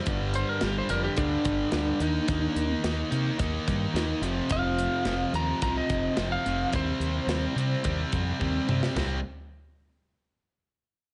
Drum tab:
CC |----------------|----------------|----------------|----------------|
HH |x-x-x-x-x-x-x-x-|x-x-x-x-x-x-x-x-|x-x-x-x-x-x-x-x-|x-x-x-x-x-x-----|
SD |----o-------o---|----o-------o---|----o-------o---|----o----------o|
T2 |----------------|----------------|----------------|--------------o-|
FT |----------------|----------------|----------------|----------------|
BD |o-------o-o-----|o-------o-o-----|o-------o-o-----|o-------o-o-o---|

CC |x---------------|
HH |----------------|
SD |o---------------|
T2 |----------------|
FT |o---------------|
BD |----------------|